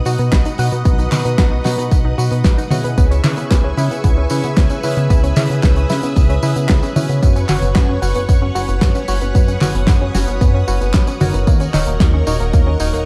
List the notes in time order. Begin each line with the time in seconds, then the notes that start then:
Already playing: B4 D#5 F#5 D#6
0.05 B2 B3 D#4 F#4 B4, open hi-hat, tambourine
0.18 B2 B3, closed hi-hat, tambourine
0.32 B1 B3, kick, snare, clap, closed hi-hat, tambourine
0.45 D#4, closed hi-hat, tambourine
0.58 B2 B3 D#4 F#4 B4, open hi-hat, tambourine
0.72 B2 B3, closed hi-hat, tambourine
0.85 B1 B3, kick, closed hi-hat, tambourine
0.98 D#4, closed hi-hat, tambourine
1.11 B2 B3 D#4 F#4 B4, clap, open hi-hat, high tom, tambourine
1.25 B2 B3, closed hi-hat, tambourine
1.38 B1 B3, kick, snare, clap, closed hi-hat, tambourine
1.52 D#4
1.64 B2 B3 D#4 F#4 B4, snare, open hi-hat, tambourine
1.78 B2 B3, closed hi-hat, tambourine
1.91 B1 B3, kick, closed hi-hat, tambourine
2.05 D#4
2.18 B2 B3 D#4 F#4 B4, open hi-hat, tambourine
2.31 B2 B3, closed hi-hat, tambourine
2.44 B1 B3, kick, snare, clap, closed hi-hat, tambourine
2.58 D#4, closed hi-hat, tambourine
2.70 B2 C#4 E4 F#4 G#4 B4, open hi-hat, high tom, tambourine
2.84 B2 B3, closed hi-hat, tambourine
2.98 C#2 B3 E5 G#5 C#6, kick, closed hi-hat, tambourine
3.11 C#4, closed hi-hat, tambourine
3.24 C#3 C#4 E4 G#4 B4, clap, open hi-hat, high tom, tambourine
3.37 C#3 B3, closed hi-hat, tambourine
3.51 C#2 B3, kick, snare, clap, closed hi-hat, tambourine
3.64 C#4
3.77 C#3 C#4 E4 G#4 B4, open hi-hat, tambourine
3.91 C#3 B3, closed hi-hat, tambourine
4.04 C#2 B3, kick, closed hi-hat, tambourine
4.17 C#4
4.30 C#3 C#4 E4 G#4 B4, open hi-hat, tambourine
4.44 C#3 B3, closed hi-hat, tambourine
4.57 C#2 B3, kick, snare, clap, closed hi-hat, tambourine
4.70 C#4, closed hi-hat, tambourine
4.83 C#3 C#4 E4 G#4 B4, open hi-hat, tambourine
4.96 C#3 B3, closed hi-hat, tambourine
5.10 C#2 B3 D#6, kick, closed hi-hat, tambourine
5.24 C#4, closed hi-hat, tambourine
5.36 C#3 C#4 E4 G#4 B4, clap, open hi-hat, high tom, tambourine
5.50 C#3 B3, closed hi-hat, tambourine
5.63 C#2 B3, kick, snare, clap, closed hi-hat, tambourine
5.76 C#4, closed hi-hat
5.89 C#3 C#4 E4 G#4 B4, snare, open hi-hat, tambourine
6.03 C#3 B3, closed hi-hat, tambourine
6.16 C#2 B3, kick, closed hi-hat, tambourine
6.30 C#4, closed hi-hat
6.43 C#3 C#4 E4 G#4 B4, open hi-hat, tambourine
6.56 C#3 B3, closed hi-hat, tambourine
6.68 C#2 B3, kick, snare, clap, closed hi-hat, tambourine
6.82 C#4, closed hi-hat, tambourine
6.96 C#3 C#4 E4 F#4 B4 C#5, open hi-hat, high tom, tambourine
7.09 C#3 B3, closed hi-hat, tambourine
7.22 F#2 B3 C#5 F#5 C#6, kick, closed hi-hat, tambourine
7.36 C#4, closed hi-hat, tambourine
7.49 F#1 C#4 F#4 B4 C#5, clap, open hi-hat, high tom, tambourine
7.62 F#1 B3, closed hi-hat, tambourine
7.75 F#2 B3, kick, snare, clap, closed hi-hat, tambourine
7.89 C#4
8.02 F#1 C#4 F#4 B4 C#5, open hi-hat, tambourine
8.15 F#1 B3, closed hi-hat, tambourine
8.29 F#2 B3, kick, closed hi-hat, tambourine
8.42 C#4
8.55 F#1 C#4 F#4 B4 C#5, open hi-hat, tambourine
8.68 F#1 B3, closed hi-hat, tambourine
8.81 F#2 B3, kick, snare, clap, closed hi-hat, tambourine
8.95 C#4, closed hi-hat, tambourine
9.08 F#1 C#4 F#4 B4 C#5, open hi-hat, tambourine
9.21 F#1 B3, closed hi-hat, tambourine
9.35 F#2 B3 D#6, kick, closed hi-hat, tambourine
9.48 C#4, closed hi-hat, tambourine
9.61 F#1 C#4 F#4 B4 C#5, clap, open hi-hat, high tom, tambourine
9.75 F#1 B3, closed hi-hat, tambourine
9.87 F#2 B3, kick, snare, clap, closed hi-hat, tambourine
10.01 C#4
10.14 F#1 C#4 F#4 B4 C#5, snare, open hi-hat, tambourine
10.27 F#1 B3, closed hi-hat, tambourine
10.41 F#2 B3, kick, closed hi-hat, tambourine
10.54 C#4
10.68 F#1 C#4 F#4 B4 C#5, open hi-hat, tambourine
10.81 F#1 B3, closed hi-hat, tambourine
10.93 F#2 B3, kick, snare, clap, closed hi-hat, tambourine
11.07 C#4, closed hi-hat, tambourine
11.20 F#1 D#4 F#4 A#4 C#5, open hi-hat, high tom, tambourine
11.34 F#1 B3, closed hi-hat, tambourine
11.47 D#2 A#3 A#4 D#5 C#6, kick, closed hi-hat, tambourine
11.60 C#4, closed hi-hat, tambourine
11.74 D#1 D#4 F#4 A#4 C#5, clap, open hi-hat, high tom, tambourine
11.87 D#1 A#3, closed hi-hat
12.00 D#2 A#3, kick, snare, clap, closed hi-hat, tambourine
12.14 C#4
12.27 D#1 D#4 F#4 A#4 C#5, open hi-hat, tambourine
12.40 D#1 A#3, closed hi-hat, tambourine
12.53 D#2 A#3, kick, closed hi-hat, tambourine
12.67 C#4
12.80 D#1 D#4 F#4 A#4 C#5, open hi-hat, tambourine
12.93 D#1 A#3, closed hi-hat, tambourine